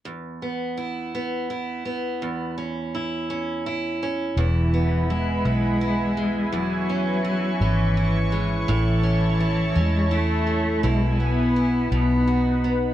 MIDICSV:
0, 0, Header, 1, 5, 480
1, 0, Start_track
1, 0, Key_signature, 4, "major"
1, 0, Tempo, 718563
1, 37, Time_signature, 6, 3, 24, 8
1, 8643, End_track
2, 0, Start_track
2, 0, Title_t, "Analog synth pad"
2, 0, Program_c, 0, 89
2, 2913, Note_on_c, 0, 80, 61
2, 2915, Note_on_c, 0, 83, 71
2, 2916, Note_on_c, 0, 64, 66
2, 2917, Note_on_c, 0, 71, 61
2, 4341, Note_off_c, 0, 83, 0
2, 4342, Note_off_c, 0, 71, 0
2, 4357, Note_on_c, 0, 85, 68
2, 4358, Note_on_c, 0, 71, 57
2, 5769, Note_off_c, 0, 80, 0
2, 5770, Note_off_c, 0, 64, 0
2, 5783, Note_off_c, 0, 71, 0
2, 5793, Note_on_c, 0, 73, 61
2, 5796, Note_on_c, 0, 81, 61
2, 5798, Note_on_c, 0, 64, 61
2, 7211, Note_off_c, 0, 85, 0
2, 7221, Note_off_c, 0, 73, 0
2, 7223, Note_off_c, 0, 81, 0
2, 7226, Note_on_c, 0, 71, 58
2, 7227, Note_on_c, 0, 83, 72
2, 7230, Note_on_c, 0, 80, 59
2, 7937, Note_off_c, 0, 64, 0
2, 7942, Note_off_c, 0, 71, 0
2, 7947, Note_off_c, 0, 80, 0
2, 7949, Note_on_c, 0, 78, 60
2, 7950, Note_on_c, 0, 63, 59
2, 7950, Note_on_c, 0, 71, 58
2, 8643, Note_off_c, 0, 63, 0
2, 8643, Note_off_c, 0, 71, 0
2, 8643, Note_off_c, 0, 78, 0
2, 8643, Note_off_c, 0, 83, 0
2, 8643, End_track
3, 0, Start_track
3, 0, Title_t, "Steel-string acoustic guitar"
3, 0, Program_c, 1, 25
3, 35, Note_on_c, 1, 40, 47
3, 282, Note_on_c, 1, 59, 37
3, 517, Note_on_c, 1, 64, 42
3, 763, Note_off_c, 1, 59, 0
3, 765, Note_on_c, 1, 59, 44
3, 999, Note_off_c, 1, 64, 0
3, 1002, Note_on_c, 1, 64, 46
3, 1235, Note_off_c, 1, 59, 0
3, 1238, Note_on_c, 1, 59, 37
3, 1476, Note_off_c, 1, 40, 0
3, 1483, Note_on_c, 1, 40, 52
3, 1718, Note_off_c, 1, 59, 0
3, 1721, Note_on_c, 1, 61, 39
3, 1965, Note_off_c, 1, 64, 0
3, 1968, Note_on_c, 1, 64, 44
3, 2196, Note_off_c, 1, 61, 0
3, 2204, Note_on_c, 1, 61, 43
3, 2444, Note_off_c, 1, 64, 0
3, 2446, Note_on_c, 1, 64, 46
3, 2680, Note_off_c, 1, 61, 0
3, 2690, Note_on_c, 1, 61, 42
3, 2915, Note_off_c, 1, 40, 0
3, 2922, Note_on_c, 1, 40, 61
3, 2925, Note_off_c, 1, 64, 0
3, 2927, Note_on_c, 1, 64, 42
3, 2971, Note_off_c, 1, 61, 0
3, 3164, Note_on_c, 1, 59, 42
3, 3405, Note_off_c, 1, 64, 0
3, 3408, Note_on_c, 1, 64, 47
3, 3640, Note_off_c, 1, 59, 0
3, 3642, Note_on_c, 1, 59, 46
3, 3879, Note_off_c, 1, 64, 0
3, 3882, Note_on_c, 1, 64, 50
3, 4122, Note_on_c, 1, 56, 45
3, 4352, Note_off_c, 1, 40, 0
3, 4359, Note_on_c, 1, 40, 54
3, 4363, Note_off_c, 1, 64, 0
3, 4365, Note_on_c, 1, 64, 40
3, 4602, Note_off_c, 1, 59, 0
3, 4605, Note_on_c, 1, 61, 42
3, 4837, Note_off_c, 1, 64, 0
3, 4840, Note_on_c, 1, 64, 51
3, 5084, Note_off_c, 1, 61, 0
3, 5086, Note_on_c, 1, 61, 48
3, 5322, Note_off_c, 1, 64, 0
3, 5324, Note_on_c, 1, 64, 49
3, 5556, Note_off_c, 1, 56, 0
3, 5558, Note_on_c, 1, 56, 45
3, 5799, Note_off_c, 1, 40, 0
3, 5799, Note_on_c, 1, 45, 60
3, 5800, Note_off_c, 1, 64, 0
3, 5803, Note_on_c, 1, 64, 53
3, 5846, Note_off_c, 1, 56, 0
3, 6031, Note_off_c, 1, 61, 0
3, 6034, Note_on_c, 1, 61, 45
3, 6278, Note_off_c, 1, 64, 0
3, 6281, Note_on_c, 1, 64, 54
3, 6507, Note_off_c, 1, 61, 0
3, 6515, Note_on_c, 1, 61, 48
3, 6745, Note_off_c, 1, 64, 0
3, 6753, Note_on_c, 1, 64, 51
3, 6992, Note_on_c, 1, 57, 43
3, 7233, Note_off_c, 1, 45, 0
3, 7233, Note_off_c, 1, 64, 0
3, 7236, Note_on_c, 1, 47, 61
3, 7241, Note_on_c, 1, 64, 54
3, 7283, Note_off_c, 1, 57, 0
3, 7285, Note_off_c, 1, 61, 0
3, 7482, Note_on_c, 1, 59, 43
3, 7715, Note_off_c, 1, 64, 0
3, 7723, Note_on_c, 1, 64, 51
3, 7954, Note_off_c, 1, 47, 0
3, 7962, Note_on_c, 1, 47, 60
3, 8009, Note_off_c, 1, 64, 0
3, 8199, Note_on_c, 1, 66, 48
3, 8445, Note_off_c, 1, 59, 0
3, 8445, Note_on_c, 1, 59, 43
3, 8643, Note_off_c, 1, 47, 0
3, 8643, Note_off_c, 1, 59, 0
3, 8643, Note_off_c, 1, 66, 0
3, 8643, End_track
4, 0, Start_track
4, 0, Title_t, "Cello"
4, 0, Program_c, 2, 42
4, 2930, Note_on_c, 2, 52, 63
4, 3416, Note_on_c, 2, 56, 74
4, 3426, Note_off_c, 2, 52, 0
4, 4366, Note_off_c, 2, 56, 0
4, 4378, Note_on_c, 2, 54, 66
4, 5098, Note_on_c, 2, 52, 73
4, 5108, Note_off_c, 2, 54, 0
4, 5627, Note_off_c, 2, 52, 0
4, 5811, Note_on_c, 2, 52, 65
4, 6536, Note_on_c, 2, 56, 76
4, 6546, Note_off_c, 2, 52, 0
4, 6777, Note_on_c, 2, 57, 77
4, 6787, Note_off_c, 2, 56, 0
4, 7257, Note_on_c, 2, 56, 66
4, 7267, Note_off_c, 2, 57, 0
4, 7488, Note_off_c, 2, 56, 0
4, 7494, Note_on_c, 2, 59, 83
4, 7940, Note_off_c, 2, 59, 0
4, 7975, Note_on_c, 2, 59, 83
4, 8480, Note_off_c, 2, 59, 0
4, 8643, End_track
5, 0, Start_track
5, 0, Title_t, "Fingered electric bass"
5, 0, Program_c, 3, 33
5, 2916, Note_on_c, 3, 28, 74
5, 3640, Note_off_c, 3, 28, 0
5, 3640, Note_on_c, 3, 35, 66
5, 4359, Note_off_c, 3, 35, 0
5, 4359, Note_on_c, 3, 28, 66
5, 5051, Note_off_c, 3, 28, 0
5, 5082, Note_on_c, 3, 32, 73
5, 5773, Note_off_c, 3, 32, 0
5, 5803, Note_on_c, 3, 33, 73
5, 6494, Note_off_c, 3, 33, 0
5, 6520, Note_on_c, 3, 40, 72
5, 7212, Note_off_c, 3, 40, 0
5, 7239, Note_on_c, 3, 35, 76
5, 7932, Note_off_c, 3, 35, 0
5, 7959, Note_on_c, 3, 35, 76
5, 8643, Note_off_c, 3, 35, 0
5, 8643, End_track
0, 0, End_of_file